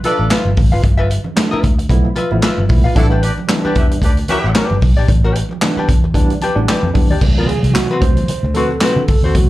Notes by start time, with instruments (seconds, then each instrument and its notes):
0.03 horn section D4 A4 B4 D5, hollow-body jazz guitar F4 B4 E5, closed hi-hat, muted conga, high conga
0.19 fingered electric bass A1, muted hollow-body jazz guitar stroke
0.30 hollow-body jazz guitar F4 B4 E5, snare, clap, closed hi-hat, muted conga
0.45 fingered electric bass G1, high conga
0.57 fingered electric bass A1, muted hollow-body jazz guitar stroke, kick, open hi-hat, low conga
0.72 fingered electric bass G#1, hollow-body jazz guitar F4 B4 F5
0.83 fingered electric bass G1, muted hollow-body jazz guitar stroke, kick, closed hi-hat
0.97 hollow-body jazz guitar F4 B4 E5
1.10 muted hollow-body jazz guitar stroke, closed hi-hat, muted conga
1.24 muted hollow-body jazz guitar stroke, high conga
1.36 tine electric piano F3 A3 B3 D4, muted hollow-body jazz guitar stroke, snare, clap, closed hi-hat, muted conga
1.51 hollow-body jazz guitar F4 B4 E5, muted fingered electric bass stroke
1.63 fingered electric bass D2, kick, closed hi-hat, muted conga, low conga
1.78 muted hollow-body jazz guitar stroke, closed hi-hat
1.89 fingered electric bass B1, tine electric piano F3 A3 B3 E4, muted hollow-body jazz guitar stroke, kick, closed hi-hat
2.05 muted hollow-body jazz guitar stroke
2.16 hollow-body jazz guitar F4 B4 E5, closed hi-hat, muted conga, high conga
2.31 fingered electric bass A1, tine electric piano F3 A3 B3 E4, muted hollow-body jazz guitar stroke
2.42 hollow-body jazz guitar F4 B4 E5, snare, clap, closed hi-hat, muted conga
2.58 fingered electric bass G1, high conga
2.69 fingered electric bass B1, tine electric piano F3 A3 B3 E4, muted hollow-body jazz guitar stroke, kick, open hi-hat, muted conga, low conga
2.84 fingered electric bass A#1, hollow-body jazz guitar F4 B4 F5
2.95 fingered electric bass A1, tine electric piano E3 G3 B3 D4, horn section A3 D4 E4 A4, muted hollow-body jazz guitar stroke, kick, closed hi-hat, muted conga
3.10 hollow-body jazz guitar D4 G4 B4
3.22 horn section D4 G4 B4 D5, muted hollow-body jazz guitar stroke, closed hi-hat
3.38 muted hollow-body jazz guitar stroke, high conga
3.48 tine electric piano E3 G3 B3 D4, muted hollow-body jazz guitar stroke, snare, clap, closed hi-hat, muted conga
3.63 horn section D4 G4 B4 D5, hollow-body jazz guitar D4 G4 B4, muted fingered electric bass stroke
3.75 fingered electric bass E2, horn section E4 G4 B4 E5, muted hollow-body jazz guitar stroke, kick, closed hi-hat, low conga
3.91 muted hollow-body jazz guitar stroke, closed hi-hat
4.02 fingered electric bass D2, horn section D4 G4 B4 D5, muted hollow-body jazz guitar stroke, kick, closed hi-hat, muted conga
4.17 muted hollow-body jazz guitar stroke, closed hi-hat
4.27 hollow-body jazz guitar D4 G4, horn section E4 G4 B4 E5, closed hi-hat, muted conga, high conga
4.32 hollow-body jazz guitar B4
4.44 fingered electric bass A1, muted hollow-body jazz guitar stroke
4.54 hollow-body jazz guitar D4 G4 B4, snare, clap, closed hi-hat
4.70 fingered electric bass G1, high conga
4.81 fingered electric bass B1, muted hollow-body jazz guitar stroke, kick, open hi-hat, muted conga, low conga
4.97 fingered electric bass A#1, hollow-body jazz guitar D4 G4 D5
5.08 fingered electric bass A1, muted hollow-body jazz guitar stroke, kick, closed hi-hat, muted conga
5.24 hollow-body jazz guitar D4 G4 B4
5.35 muted hollow-body jazz guitar stroke, closed hi-hat
5.49 muted hollow-body jazz guitar stroke, high conga
5.61 tine electric piano E3 G3 B3 D4, muted hollow-body jazz guitar stroke, snare, clap, closed hi-hat, muted conga
5.77 hollow-body jazz guitar D4 G4 B4, muted fingered electric bass stroke
5.88 fingered electric bass E2, muted hollow-body jazz guitar stroke, kick, closed hi-hat, low conga
6.04 muted hollow-body jazz guitar stroke
6.14 fingered electric bass D2, tine electric piano E3 G3 B3 D4, muted hollow-body jazz guitar stroke, kick, closed hi-hat
6.30 muted hollow-body jazz guitar stroke, closed hi-hat
6.41 hollow-body jazz guitar D4 G4 B4, closed hi-hat, high conga
6.55 fingered electric bass A1, tine electric piano E3 G3 B3 D4, muted hollow-body jazz guitar stroke
6.68 hollow-body jazz guitar D4 G4 B4, snare, clap, closed hi-hat
6.83 fingered electric bass F2, high conga
6.93 fingered electric bass E2, tine electric piano E3 G3 B3 D4, muted hollow-body jazz guitar stroke, kick, open hi-hat, muted conga, low conga
7.09 fingered electric bass D#2, hollow-body jazz guitar D4 G4 D5
7.20 fingered electric bass D2, tine electric piano B2 C3 E3 F#3, muted hollow-body jazz guitar stroke, kick, crash, low conga
7.38 hollow-body jazz guitar C4 F#4 B4
7.48 tine electric piano G#4, muted hollow-body jazz guitar stroke, closed hi-hat
7.63 fingered electric bass C2, muted hollow-body jazz guitar stroke, closed hi-hat, high conga
7.74 tine electric piano F#4, muted hollow-body jazz guitar stroke, snare, clap, closed hi-hat, muted conga
7.91 hollow-body jazz guitar C4 F#4 B4
8.00 fingered electric bass D2, tine electric piano C3 E3 F#3 B3 C5, muted hollow-body jazz guitar stroke, kick, closed hi-hat, low conga
8.15 muted hollow-body jazz guitar stroke, closed hi-hat, high conga
8.28 muted fingered electric bass stroke, muted hollow-body jazz guitar stroke, closed hi-hat, muted conga
8.43 fingered electric bass D2, muted hollow-body jazz guitar stroke
8.54 hollow-body jazz guitar C4 F#4 B4, tine electric piano A4, closed hi-hat, high conga
8.71 muted hollow-body jazz guitar stroke
8.80 hollow-body jazz guitar C4 F#4 B4, snare, clap, closed hi-hat, muted conga
8.96 fingered electric bass D3, high conga
9.08 tine electric piano A4, muted hollow-body jazz guitar stroke, kick, open hi-hat, low conga
9.23 fingered electric bass D#2, hollow-body jazz guitar C4 F#4 C5
9.35 fingered electric bass D2, tine electric piano C3 E3 F#3 B3 F#4, muted hollow-body jazz guitar stroke, kick, closed hi-hat, muted conga, low conga